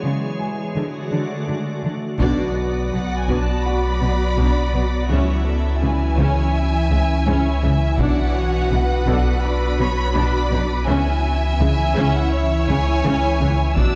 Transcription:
0.00 0.12 C#3 soft
0.00 0.76 E3 medium
0.00 0.76 G#3 medium
0.00 0.76 G#4 medium
0.00 0.76 C#5 soft
0.39 2.16 G#5 soft
0.76 0.84 D3 soft
0.76 2.21 D3 medium
0.76 2.21 A3 soft
0.76 2.20 F#4 medium
0.76 2.20 D5 medium
1.12 1.20 D3 soft
1.48 1.56 D3 soft
1.84 1.92 D3 soft
2.20 2.54 B1 medium
2.20 5.11 B1 medium
2.20 2.54 B2 medium
2.20 5.06 F#3 medium
2.20 5.06 B3 medium
2.20 2.54 D4 medium
2.20 5.06 F#4 medium
2.20 2.89 D5 medium
2.20 5.06 D5 medium
2.20 taiko medium
2.93 3.01 B1 soft
2.93 3.01 B2 soft
2.93 3.02 B3 soft
2.93 3.17 F#5 soft
3.17 3.41 G#5 medium
3.29 3.37 B1 soft
3.29 3.37 B2 soft
3.29 3.63 D4 soft
3.29 taiko soft
3.40 3.64 A5 medium
3.64 5.78 F#4 soft
3.64 5.06 D5 medium
3.64 5.78 F#5 soft
3.64 5.09 B5 medium
4.01 4.10 B1 soft
4.01 4.09 B2 soft
4.01 4.10 B3 soft
4.37 4.46 B1 soft
4.37 4.45 B2 soft
4.37 4.71 D4 soft
4.74 4.82 B1 soft
4.74 4.82 B2 soft
4.74 4.83 F#3 soft
5.08 8.00 C#2 medium
5.08 5.18 C#2 soft
5.08 5.18 C#3 soft
5.08 8.00 E3 medium
5.08 5.44 C#4 soft
5.08 8.00 C#4 medium
5.08 7.95 E4 soft
5.08 8.00 E4 medium
5.08 5.44 C#5 soft
5.08 5.81 E5 medium
5.08 7.99 E5 medium
5.46 5.82 A4 soft
5.82 5.90 C#2 soft
5.82 5.90 C#3 soft
5.82 5.92 G#3 soft
5.82 6.18 B4 soft
5.82 7.99 G#5 medium
6.17 6.26 C#2 soft
6.17 6.26 C#3 medium
6.17 6.52 C#4 soft
6.17 6.54 C#5 soft
6.55 7.27 E5 medium
6.90 6.99 C#2 soft
6.90 6.98 C#3 soft
6.90 6.99 G#3 soft
7.26 7.34 C#2 medium
7.26 7.35 C#3 medium
7.26 7.61 C#4 soft
7.26 9.39 E4 soft
7.26 7.63 C#5 soft
7.26 9.40 G#5 soft
7.62 7.71 C#2 soft
7.62 7.71 C#3 soft
7.62 7.71 E3 soft
7.62 7.98 E5 medium
7.98 10.90 B1 medium
7.98 8.07 B1 medium
7.98 8.07 B2 soft
7.98 10.88 B3 medium
7.98 10.87 D4 medium
7.98 8.32 D4 soft
7.98 10.84 F#4 soft
7.98 10.88 F#4 medium
7.98 10.88 B4 medium
7.98 8.35 D5 medium
7.98 9.40 F#5 medium
7.98 taiko medium
8.35 8.71 C#5 soft
8.71 8.79 B1 soft
8.71 8.79 B2 soft
8.71 8.79 B3 soft
8.71 9.42 B4 soft
9.06 9.15 B1 medium
9.06 9.15 B2 medium
9.06 9.41 D4 medium
9.06 11.20 A4 soft
9.06 taiko soft
9.43 9.79 D5 medium
9.43 10.88 B5 medium
9.78 9.87 B1 soft
9.78 9.87 B2 soft
9.78 9.88 B3 soft
9.78 10.14 C#5 medium
10.14 10.24 B1 medium
10.14 10.23 B2 medium
10.14 10.49 D4 medium
10.14 10.86 D5 medium
10.51 10.60 B1 soft
10.51 10.59 B2 soft
10.51 10.60 F#3 soft
10.87 10.96 C#2 medium
10.87 13.78 C#2 medium
10.87 10.95 C#3 medium
10.87 13.77 E3 medium
10.87 13.77 C#4 medium
10.87 11.22 C#4 medium
10.87 13.77 E4 medium
10.87 12.29 E5 medium
10.87 13.78 E5 medium
10.87 11.58 G#5 medium
11.60 11.68 C#2 soft
11.60 11.68 C#3 soft
11.60 11.68 G#3 soft
11.60 12.13 G#5 medium
11.96 12.04 C#2 medium
11.96 12.04 C#3 medium
11.96 12.30 C#4 medium
12.15 12.33 F#5 medium
12.32 13.77 C#5 medium
12.32 12.67 E5 medium
12.67 12.76 C#2 soft
12.67 12.76 C#3 soft
12.67 12.77 G#3 soft
12.67 13.76 G#5 medium
13.04 13.12 C#2 medium
13.04 13.13 C#3 medium
13.04 13.38 C#4 medium
13.40 13.48 C#2 soft
13.40 13.49 C#3 soft
13.40 13.50 E3 medium
13.76 13.95 B1 medium
13.76 13.85 B1 medium
13.76 13.86 B2 medium
13.76 13.95 F#3 medium
13.76 13.95 B3 medium
13.76 13.95 D4 medium
13.76 13.95 F#4 medium
13.76 13.95 D5 medium
13.76 13.95 E6 loud
13.76 taiko medium

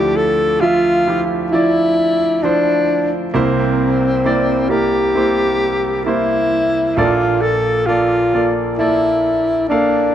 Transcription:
0.00 3.31 D2 soft
0.00 3.31 D3 soft
0.00 0.57 F3 medium
0.00 0.58 E4 medium
0.00 0.18 G4 medium
0.00 0.58 D5 medium
0.16 0.62 A4 medium
0.61 1.04 F3 medium
0.61 1.25 F4 medium
0.61 1.05 F4 soft
0.61 1.05 E5 medium
1.07 1.50 F3 soft
1.07 1.51 E4 soft
1.07 1.51 G4 soft
1.51 2.39 F3 soft
1.51 2.44 E4 medium
1.51 2.39 E4 soft
1.51 2.40 D5 medium
2.43 3.30 F3 soft
2.43 3.11 D4 medium
2.43 3.30 E4 soft
2.43 3.30 C5 medium
3.34 6.94 C2 soft
3.34 6.94 C3 soft
3.34 4.20 A#3 medium
3.34 4.71 C4 medium
3.34 4.21 E4 medium
3.34 4.21 C5 medium
4.24 4.68 A#3 medium
4.24 4.68 E4 soft
4.24 4.69 D5 medium
4.69 5.13 A#3 soft
4.69 5.13 E4 soft
4.69 6.05 G4 medium
4.69 5.14 A#4 soft
5.15 6.02 A#3 soft
5.15 6.02 E4 soft
5.15 6.03 C5 medium
6.05 6.93 A#3 soft
6.05 6.97 E4 medium
6.05 6.93 E4 soft
6.05 6.94 C5 medium
6.96 10.15 A#1 soft
6.96 10.15 A#2 soft
6.96 7.84 A#3 medium
6.96 7.43 F4 medium
6.96 7.84 A4 medium
6.96 7.85 D5 medium
7.42 7.88 A4 medium
7.86 8.31 A#3 medium
7.86 8.51 F4 medium
7.86 8.32 A4 soft
7.86 8.32 D5 medium
8.33 8.77 A#3 soft
8.33 8.77 A4 soft
8.33 8.78 D5 soft
8.78 9.66 A#3 soft
8.78 9.66 E4 medium
8.78 9.66 A4 soft
8.78 9.66 D5 soft
9.69 10.15 A#3 medium
9.69 10.15 D4 medium
9.69 10.15 A4 soft
9.69 10.15 F5 medium

